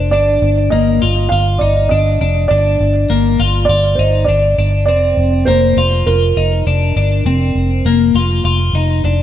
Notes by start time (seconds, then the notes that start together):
Already playing: F1 D4
0.11 G1 D4 D5
0.42 G1
0.70 G1 A#3 D#5
1.02 G1 F4
1.29 G1 F4 F5
1.58 G1 D#4 D5
1.89 G1 D4 D#5
2.21 F1 D4
2.48 G1 D4 D5
2.80 G1
3.09 G1 A#3
3.39 G1 F4
3.65 D5
3.69 G1 F4
3.95 G1 D#4 C5
4.25 G1 D4 D5
4.58 G1 D4
4.86 F1 C4 D5
5.17 F1
5.45 F1 A#3 C5
5.77 F1 F4
6.06 F1 F4 A#4
6.37 F1 D#4
6.67 F1 D4
6.96 G1 D4
7.25 F1 C4
7.55 F1
7.85 F1 A#3
8.14 F1 F4
8.44 F1 F4
8.73 F1 D#4
9.04 F1 D4